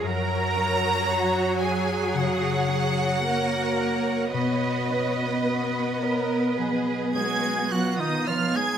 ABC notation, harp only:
X:1
M:4/4
L:1/8
Q:1/4=54
K:Cblyd
V:1 name="Harp"
[G,,Dd] D2 d D, D2 d | =B,, ^C2 ^c ^F, C2 c |]